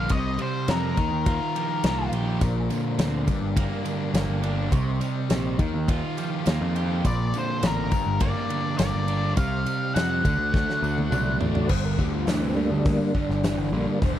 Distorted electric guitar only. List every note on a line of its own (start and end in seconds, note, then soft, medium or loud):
0.00 0.10 G2 medium
0.00 0.11 A#3 medium
0.00 0.11 D4 medium
0.10 0.67 C3 medium
0.39 0.97 G3 medium
0.69 0.97 C3 medium
0.98 2.42 D#3 medium
1.27 1.84 F4 medium
1.56 2.13 G4 medium
1.86 2.43 F4 medium
2.14 2.42 G4 medium
2.41 3.27 A#2 medium
2.71 2.97 D3 medium
2.98 3.28 D3 medium
3.28 4.73 G2 medium
3.56 4.13 A#3 medium
3.85 4.42 D4 medium
4.14 4.72 A#3 medium
4.43 4.72 D4 medium
4.71 5.29 C3 medium
5.00 5.59 G3 medium
5.30 5.58 C3 medium
5.58 7.04 D#3 medium
5.88 6.46 F4 medium
6.17 6.74 G4 medium
6.47 7.05 F4 medium
6.75 7.04 G4 medium
7.05 7.92 A#2 medium
7.34 7.62 D3 medium
7.63 7.92 D3 medium
7.92 9.37 G2 medium
8.21 8.77 A#3 medium
8.49 9.06 D4 medium
8.78 9.36 A#3 medium
9.07 9.37 D4 medium
9.36 9.95 C3 medium
9.66 10.24 G3 medium
9.96 10.24 C3 medium
10.25 11.69 D3 medium
10.54 11.11 A3 medium
10.83 11.39 D4 medium
11.13 11.70 A3 medium
11.41 11.70 D4 medium
11.70 11.96 G2 medium
11.70 11.96 D3 medium
11.98 12.24 G2 medium
11.98 12.25 D3 medium
12.27 12.53 G2 medium
12.27 12.54 E3 medium
12.56 12.82 G2 medium
12.56 12.83 D3 medium
12.85 13.11 G2 medium
12.85 13.12 D3 loud
13.14 13.40 G2 medium
13.14 13.40 D3 medium
13.43 13.69 G2 medium
13.43 13.69 E3 loud
13.73 13.99 G2 medium
13.73 13.99 D3 medium
14.02 14.19 G2 medium
14.02 14.19 D3 medium